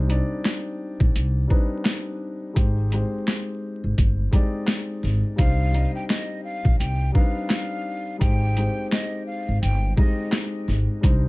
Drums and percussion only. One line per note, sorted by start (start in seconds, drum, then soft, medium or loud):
0.10 closed hi-hat medium
0.45 snare loud
0.45 clap medium
0.45 closed hi-hat medium
1.00 kick medium
1.16 closed hi-hat medium
1.50 kick medium
1.85 snare loud
1.85 clap loud
1.85 closed hi-hat medium
2.56 kick loud
2.56 closed hi-hat medium
2.92 closed hi-hat medium
3.27 snare loud
3.27 clap medium
3.27 closed hi-hat medium
3.98 kick medium
3.98 closed hi-hat medium
4.33 kick medium
4.33 closed hi-hat medium
4.67 snare loud
4.67 clap loud
4.67 closed hi-hat medium
5.03 snare soft
5.38 kick loud
5.38 closed hi-hat medium
5.74 closed hi-hat medium
6.10 snare loud
6.10 clap medium
6.10 closed hi-hat medium
6.65 kick medium
6.80 closed hi-hat medium
7.15 kick medium
7.50 snare loud
7.50 clap loud
7.50 closed hi-hat medium
8.21 kick loud
8.21 closed hi-hat medium
8.57 closed hi-hat medium
8.92 snare loud
8.92 clap medium
8.92 closed hi-hat medium
9.63 closed hi-hat medium
9.97 kick medium
10.32 snare loud
10.32 clap loud
10.32 closed hi-hat medium
10.68 snare soft
11.03 kick loud
11.03 closed hi-hat medium